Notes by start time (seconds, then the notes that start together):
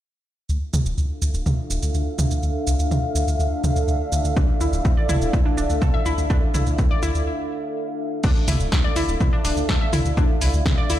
0.49 D2 D4 A4 E5 F5, shaker
0.74 D2, mid tom, shaker
0.86 D1, shaker
0.98 D2, shaker
1.22 D2, shaker
1.34 D1, shaker
1.46 D2, mid tom, shaker
1.70 D1, shaker
1.83 D2, shaker
1.94 D2, shaker
2.19 D2, mid tom, shaker
2.31 D2, shaker
2.43 D2, shaker
2.67 C2, shaker
2.79 D2, shaker
2.91 D2, mid tom, shaker
3.15 D2, shaker
3.28 D2, shaker
3.40 D2, shaker
3.64 D2, mid tom, shaker
3.76 D2, shaker
3.88 D2, shaker
4.12 D2, shaker
4.24 D2, shaker
4.37 D2 D4, kick, mid tom, shaker
4.61 D2 E4, shaker
4.73 D1, shaker
4.85 D2, kick, shaker
4.97 D5
5.09 D2 E4, mid tom, shaker
5.21 D1, shaker
5.33 D2, kick, shaker
5.46 D4
5.57 D1 D4, shaker
5.70 D2, shaker
5.82 D2 A4, kick, mid tom, shaker
5.94 E5
6.06 D2 E4, shaker
6.18 D2, shaker
6.30 D2 D4, kick, shaker
6.54 C2 E4, mid tom, shaker
6.67 D2, shaker
6.79 D2, kick, shaker
6.91 D5
7.03 D2 E4, shaker
7.15 D2, shaker
8.24 D2 D4 A4 E5 F5, kick, crash, shaker
8.48 D2 E4, mid tom, open hi-hat, shaker
8.60 D1, shaker
8.72 D2, kick, snare, shaker
8.84 D5
8.96 D2 E4, open hi-hat, shaker
9.08 D1, shaker
9.20 D2, kick, mid tom, shaker
9.33 D4
9.44 D1 D4, open hi-hat, shaker
9.57 D2, shaker
9.69 D2 A4, kick, snare, shaker
9.81 E5
9.93 D2 E4, mid tom, open hi-hat, shaker
10.05 D2, shaker
10.17 D2 D4, kick, shaker
10.41 C2 E4, open hi-hat, shaker
10.54 D2, shaker
10.66 D2, kick, snare, mid tom, shaker
10.78 D5
10.90 D2 E4, open hi-hat, shaker